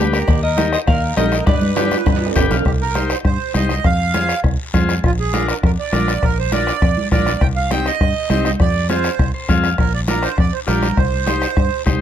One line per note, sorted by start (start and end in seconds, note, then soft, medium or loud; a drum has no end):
0.00 0.22 D2 medium
0.00 0.19 D4 medium
0.00 0.19 G4 medium
0.00 0.19 B4 medium
0.13 0.41 G4 medium
0.13 0.41 A#4 medium
0.13 bombo rim medium
0.13 short guiro medium
0.28 0.76 D#2 medium
0.28 bombo low medium
0.28 bombo rim medium
0.28 cowbell loud
0.28 high conga soft
0.28 long guiro medium
0.43 0.70 A#4 medium
0.43 0.71 D#5 medium
0.43 high conga soft
0.57 0.78 D#4 medium
0.57 0.78 G4 medium
0.57 0.78 A#4 medium
0.57 bombo rim medium
0.57 high conga loud
0.57 short guiro medium
0.73 0.79 C5 medium
0.73 0.78 D#5 medium
0.73 bombo rim medium
0.73 short guiro medium
0.87 1.11 D#2 loud
0.87 1.16 A#4 medium
0.87 1.17 F5 medium
0.87 bombo low medium
0.87 bombo rim medium
0.87 cowbell medium
0.87 long guiro medium
1.17 1.41 A#1 medium
1.17 1.38 D#4 medium
1.17 1.38 G4 medium
1.17 1.45 A#4 medium
1.17 1.38 A#4 medium
1.17 1.46 D#5 medium
1.17 bombo rim medium
1.17 high conga medium
1.17 low timbale medium
1.17 short guiro medium
1.32 bombo rim medium
1.32 short guiro medium
1.46 1.94 G2 medium
1.46 2.32 B4 medium
1.46 2.32 D5 medium
1.46 bombo low medium
1.46 bombo rim medium
1.46 cowbell loud
1.46 high conga medium
1.46 long guiro medium
1.62 high conga medium
1.76 1.97 D4 medium
1.76 1.97 G4 medium
1.76 1.98 B4 medium
1.76 bombo rim medium
1.76 low conga medium
1.76 high timbale medium
1.76 short guiro medium
1.86 high timbale medium
1.91 bombo rim medium
1.91 high conga medium
1.91 short guiro medium
2.06 2.30 G2 medium
2.06 bombo low medium
2.06 bombo rim medium
2.06 cowbell medium
2.06 low conga medium
2.06 long guiro medium
2.16 high timbale medium
2.26 low timbale medium
2.35 2.49 G1 medium
2.35 2.56 D4 medium
2.35 2.57 G4 medium
2.35 2.57 B4 medium
2.35 2.50 G5 medium
2.35 bombo low medium
2.35 bombo rim medium
2.35 low conga medium
2.35 low timbale medium
2.35 short guiro medium
2.51 2.64 B1 medium
2.51 2.65 F5 medium
2.51 bombo rim medium
2.51 low conga medium
2.51 short guiro medium
2.56 low timbale medium
2.65 3.13 C2 medium
2.65 2.72 G4 medium
2.65 bombo low medium
2.65 bombo rim medium
2.65 high conga soft
2.65 long guiro medium
2.80 3.11 A#4 medium
2.80 high conga soft
2.95 3.16 D#4 medium
2.95 3.16 G4 medium
2.95 3.16 C5 medium
2.95 bombo rim medium
2.95 high conga medium
2.95 short guiro medium
3.10 3.18 C5 medium
3.10 bombo rim medium
3.10 short guiro medium
3.25 3.37 G2 medium
3.25 3.53 C5 medium
3.25 bombo low medium
3.25 bombo rim medium
3.25 long guiro medium
3.54 3.78 C2 medium
3.54 3.75 D#4 medium
3.54 3.75 G4 medium
3.54 3.75 C5 medium
3.54 3.86 D#5 medium
3.54 bombo rim medium
3.54 high conga medium
3.54 short guiro medium
3.69 bombo rim medium
3.69 high conga medium
3.69 short guiro medium
3.84 4.32 F2 medium
3.84 4.40 F5 loud
3.84 bombo low medium
3.84 bombo rim medium
3.84 high conga soft
3.84 long guiro medium
4.00 high conga soft
4.14 4.35 F4 medium
4.14 4.35 G#4 medium
4.14 4.35 C5 medium
4.14 bombo rim medium
4.14 high conga medium
4.14 short guiro medium
4.29 bombo rim medium
4.29 short guiro medium
4.44 4.56 C2 medium
4.44 bombo low medium
4.44 bombo rim medium
4.44 long guiro medium
4.74 4.98 F2 medium
4.74 4.95 F4 medium
4.74 4.95 G#4 medium
4.74 4.95 C5 medium
4.74 bombo low medium
4.74 bombo rim medium
4.74 high conga medium
4.74 short guiro medium
4.89 bombo rim medium
4.89 high conga medium
4.89 short guiro medium
5.04 5.51 A#1 medium
5.04 5.11 F4 medium
5.04 bombo low medium
5.04 bombo rim medium
5.04 high conga soft
5.04 long guiro medium
5.19 5.47 G#4 medium
5.19 high conga soft
5.33 5.54 D4 medium
5.33 5.54 F4 medium
5.33 5.54 A#4 medium
5.33 bombo rim medium
5.33 high conga medium
5.33 short guiro medium
5.48 5.56 A#4 medium
5.48 bombo rim medium
5.48 short guiro medium
5.63 5.75 F2 loud
5.63 5.71 A#4 medium
5.63 bombo low medium
5.63 bombo rim medium
5.63 long guiro medium
5.79 6.25 D5 medium
5.92 6.16 A#1 medium
5.92 6.13 D4 medium
5.92 6.14 F4 medium
5.92 6.14 A#4 medium
5.92 bombo rim medium
5.92 high conga medium
5.92 short guiro medium
6.08 bombo rim medium
6.08 short guiro medium
6.23 6.70 A#1 medium
6.23 6.38 A#4 medium
6.23 bombo low medium
6.23 bombo rim medium
6.23 high conga soft
6.23 long guiro medium
6.38 6.52 C5 medium
6.38 high conga soft
6.52 6.73 D4 medium
6.52 6.73 F4 medium
6.52 6.73 A#4 medium
6.52 7.08 D5 medium
6.52 bombo rim medium
6.52 high conga medium
6.52 short guiro medium
6.67 bombo rim medium
6.67 short guiro medium
6.82 6.94 F2 medium
6.82 bombo low medium
6.82 bombo rim medium
6.82 long guiro medium
6.97 high conga medium
7.11 7.35 A#1 medium
7.11 7.32 D4 medium
7.11 7.33 F4 medium
7.11 7.33 A#4 medium
7.11 7.42 D5 medium
7.11 bombo low medium
7.11 bombo rim medium
7.11 high conga medium
7.11 short guiro medium
7.26 bombo rim medium
7.26 high conga medium
7.26 short guiro medium
7.41 7.89 C2 medium
7.41 7.48 G5 medium
7.41 bombo low medium
7.41 bombo rim medium
7.41 high conga soft
7.41 long guiro medium
7.56 7.70 F5 medium
7.56 high conga soft
7.71 7.92 C4 medium
7.71 7.92 D#4 medium
7.71 7.92 G4 medium
7.71 7.86 G5 loud
7.71 bombo rim medium
7.71 high conga medium
7.71 short guiro medium
7.86 8.44 D#5 loud
7.86 bombo rim medium
7.86 short guiro medium
8.01 8.13 G2 medium
8.01 bombo low medium
8.01 bombo rim medium
8.01 long guiro medium
8.30 8.54 C2 medium
8.30 8.51 C4 medium
8.30 8.51 D#4 medium
8.30 8.51 G4 medium
8.30 bombo rim medium
8.30 high conga medium
8.30 short guiro medium
8.45 8.52 D#5 medium
8.45 bombo rim medium
8.45 high conga medium
8.45 short guiro medium
8.60 9.08 F2 medium
8.60 8.87 D5 loud
8.60 bombo low medium
8.60 bombo rim medium
8.60 long guiro medium
8.74 high conga soft
8.89 9.10 C4 medium
8.89 9.10 F4 medium
8.89 9.11 G#4 medium
8.89 9.31 C5 medium
8.89 bombo rim medium
8.89 high conga medium
8.89 short guiro medium
9.04 bombo rim medium
9.04 short guiro medium
9.19 9.31 C2 medium
9.19 bombo low medium
9.19 bombo rim medium
9.19 long guiro medium
9.34 9.48 C5 medium
9.49 9.73 F2 medium
9.49 9.70 C4 medium
9.49 9.70 F4 medium
9.49 9.70 G#4 medium
9.49 9.77 F5 medium
9.49 bombo low medium
9.49 bombo rim medium
9.49 high conga medium
9.49 short guiro medium
9.64 bombo rim medium
9.64 short guiro medium
9.78 10.26 A#1 medium
9.78 9.93 A#4 medium
9.78 bombo low medium
9.78 bombo rim medium
9.78 high conga soft
9.78 long guiro medium
9.93 10.00 D5 medium
9.93 high conga soft
10.08 10.29 D4 medium
10.08 10.29 F4 medium
10.08 10.29 A#4 medium
10.08 10.24 A#4 medium
10.08 bombo rim medium
10.08 high conga medium
10.08 short guiro medium
10.23 10.38 C5 medium
10.23 bombo rim medium
10.23 short guiro medium
10.38 10.50 F2 medium
10.38 10.54 D5 medium
10.38 bombo low medium
10.38 bombo rim medium
10.38 long guiro medium
10.53 10.60 C5 medium
10.67 10.91 A#1 medium
10.67 10.88 D4 medium
10.67 10.88 F4 medium
10.67 10.88 G4 medium
10.67 10.98 A#4 medium
10.67 bombo rim medium
10.67 high conga medium
10.67 short guiro medium
10.83 bombo rim medium
10.83 high conga medium
10.83 short guiro medium
10.97 11.45 C2 medium
10.97 11.82 C5 medium
10.97 bombo low medium
10.97 bombo rim medium
10.97 high conga soft
10.97 long guiro medium
11.12 high conga soft
11.26 11.47 D#4 medium
11.26 11.48 G4 medium
11.26 11.48 C5 medium
11.26 bombo rim medium
11.26 high conga medium
11.26 short guiro medium
11.42 bombo rim medium
11.42 short guiro medium
11.57 11.69 G2 medium
11.57 bombo low medium
11.57 bombo rim medium
11.57 long guiro medium
11.86 12.01 C2 medium
11.86 12.01 D#4 medium
11.86 12.01 G4 medium
11.86 12.01 C5 medium
11.86 bombo low medium
11.86 bombo rim medium
11.86 high conga medium
11.86 short guiro medium